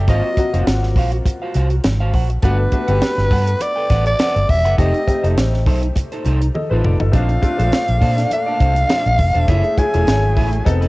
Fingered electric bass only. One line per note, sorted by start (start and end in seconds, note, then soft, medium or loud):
0.08 0.20 G#1 loud
0.54 0.64 F1 medium
0.67 0.96 G#1 medium
0.96 1.19 A#1 medium
1.55 1.78 C2 medium
1.85 2.14 G#1 medium
2.14 2.37 A#1 medium
2.43 2.66 G1 loud
2.88 2.99 G1 medium
3.18 3.28 G1 medium
3.31 3.54 G2 medium
3.90 4.13 A1 medium
4.36 4.46 G1 medium
4.49 4.65 E1 medium
4.65 4.75 F#1 medium
4.79 4.91 F1 medium
5.24 5.34 F1 medium
5.37 5.67 A1 medium
5.67 5.89 B1 medium
6.26 6.48 C2 medium
6.71 6.81 A1 medium
6.85 6.97 F1 loud
7.00 7.11 G1 medium
7.13 7.36 A#1 loud
7.59 7.70 A#1 medium
7.89 7.99 A#1 medium
8.02 8.24 A#2 medium
8.60 8.83 C2 medium
9.06 9.16 A#1 medium
9.19 9.32 F1 medium
9.35 9.46 E1 medium
9.49 9.61 F#1 loud
9.95 10.05 E1 medium
10.08 10.37 G#1 medium
10.37 10.60 A1 medium
10.67 10.88 F1 loud